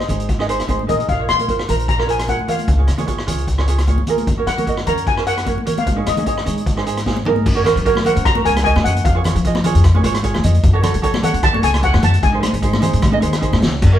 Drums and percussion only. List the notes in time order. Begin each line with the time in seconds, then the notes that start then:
0.00 cross-stick
0.09 closed hi-hat, low conga
0.20 closed hi-hat
0.29 kick, closed hi-hat
0.40 cross-stick
0.49 closed hi-hat
0.60 cross-stick, closed hi-hat
0.68 kick, closed hi-hat, high conga
0.79 high conga
0.89 closed hi-hat, low conga
1.00 closed hi-hat
1.09 kick, closed hi-hat
1.29 cross-stick, closed hi-hat
1.39 closed hi-hat, high conga
1.48 kick, closed hi-hat
1.59 cross-stick
1.68 closed hi-hat, low conga
1.79 closed hi-hat
1.88 kick, closed hi-hat
1.99 cross-stick
2.09 closed hi-hat
2.19 cross-stick, closed hi-hat
2.28 kick, closed hi-hat, high conga
2.39 high conga
2.48 closed hi-hat, low conga
2.59 closed hi-hat, high conga
2.68 kick, closed hi-hat
2.87 cross-stick, closed hi-hat
2.98 closed hi-hat, high conga, low conga
3.08 kick, closed hi-hat
3.18 cross-stick
3.28 closed hi-hat, low conga
3.38 closed hi-hat
3.48 kick, closed hi-hat
3.58 cross-stick
3.68 closed hi-hat
3.78 cross-stick, closed hi-hat
3.87 kick, closed hi-hat, high conga
3.98 high conga
4.07 closed hi-hat, low conga
4.18 closed hi-hat, high conga
4.27 kick, closed hi-hat
4.47 cross-stick, closed hi-hat
4.58 closed hi-hat, high conga, low conga
4.67 kick, closed hi-hat
4.77 cross-stick
4.87 closed hi-hat, low conga
4.97 closed hi-hat
5.07 kick, closed hi-hat
5.17 cross-stick
5.27 closed hi-hat
5.37 cross-stick, closed hi-hat
5.46 kick, closed hi-hat, high conga
5.58 high conga
5.66 closed hi-hat, low conga
5.77 closed hi-hat, high conga
5.87 kick, closed hi-hat
6.06 cross-stick, closed hi-hat, high conga
6.17 closed hi-hat, high conga, low conga
6.26 kick, closed hi-hat
6.37 cross-stick
6.46 closed hi-hat, low conga
6.58 closed hi-hat
6.66 kick, closed hi-hat
6.77 cross-stick
6.86 closed hi-hat
6.97 cross-stick, closed hi-hat
7.06 kick, snare, high conga
7.17 high conga
7.25 floor tom, low conga
7.36 high conga
7.46 kick, crash
7.65 cross-stick, closed hi-hat, low conga
7.77 closed hi-hat
7.86 kick, closed hi-hat
7.95 cross-stick, high conga
8.05 closed hi-hat, low conga
8.16 closed hi-hat
8.25 kick, cross-stick, closed hi-hat
8.35 high conga
8.45 closed hi-hat
8.56 cross-stick, closed hi-hat
8.65 kick, closed hi-hat
8.76 cross-stick, high conga
8.85 closed hi-hat
8.96 closed hi-hat
9.05 kick, closed hi-hat
9.24 cross-stick, closed hi-hat, low conga
9.36 closed hi-hat
9.45 kick, closed hi-hat
9.55 cross-stick, high conga
9.64 closed hi-hat, low conga
9.75 closed hi-hat
9.84 kick, cross-stick, closed hi-hat
9.95 high conga
10.04 closed hi-hat
10.14 cross-stick, closed hi-hat
10.24 kick, closed hi-hat
10.34 cross-stick, high conga
10.43 closed hi-hat, low conga
10.54 closed hi-hat
10.63 kick, closed hi-hat
10.83 cross-stick, closed hi-hat, low conga
10.94 closed hi-hat
11.03 kick, closed hi-hat
11.14 cross-stick, high conga
11.23 closed hi-hat, low conga
11.34 closed hi-hat
11.43 kick, cross-stick, closed hi-hat
11.54 high conga
11.63 closed hi-hat
11.74 cross-stick, closed hi-hat
11.83 kick, closed hi-hat
11.94 cross-stick, high conga
12.03 closed hi-hat, low conga
12.14 closed hi-hat
12.23 kick, closed hi-hat
12.43 cross-stick, closed hi-hat, high conga
12.54 closed hi-hat
12.63 kick, closed hi-hat
12.73 cross-stick, high conga
12.82 closed hi-hat, low conga
12.93 closed hi-hat
13.02 kick, cross-stick, closed hi-hat, high conga, low conga
13.13 high conga
13.22 closed hi-hat
13.33 cross-stick, closed hi-hat
13.42 kick, closed hi-hat
13.53 cross-stick, high conga
13.62 snare, low conga
13.82 kick, closed hi-hat, crash